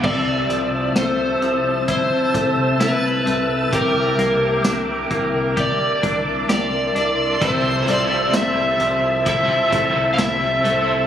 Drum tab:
CC |x-------|--------|--------|
HH |-xxxxxxx|xxxxxxxx|xxxxxxxx|
TB |--x---x-|--x---x-|--x---x-|
SD |--o---o-|--o---o-|--o---o-|
BD |o---oo--|o--ooo--|o---oo--|